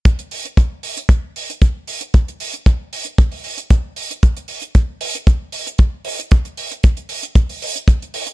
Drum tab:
HH |xxoxx-oxx-oxx-ox|xxoxx-oxxooxx-ox|xxoxx-oxx-oxx-ox|xxoxxxoxxooxxxox|
BD |o---o---o---o---|o---o---o---o---|o---o---o---o---|o---o---o---o---|